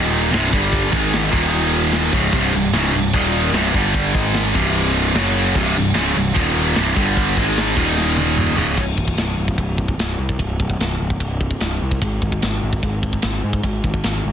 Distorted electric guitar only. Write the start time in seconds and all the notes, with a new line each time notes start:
Already playing: D#2 A#2 D#3
0.31 C2 G2 C3
0.52 G2 D3 G3
0.90 G#2 D#3 G#3
1.30 D#2 A#2 D#3
2.14 C#2 G#2 C#3
2.33 C2 G2 C3
2.54 C2 G2
2.74 C#2 G#2 C#3
2.93 C2 G2
3.14 D#2 A#2 D#3
3.54 C2 G2 C3
3.74 G2 D3 G3
4.14 G#2 D#3 G#3
4.54 C2 G2 C3
5.14 F#2 C#3 F#3
5.56 C2 G2 C3
5.75 C2 G2
5.94 C#2 G#2 C#3
6.15 C2 G2
6.35 D#2 A#2 D#3
6.75 C2 G2 C3
6.96 G2 D3 G3
7.37 G#2 D#3 G#3
7.77 D#2 A#2 D#3
8.57 C#2 G#2 C#3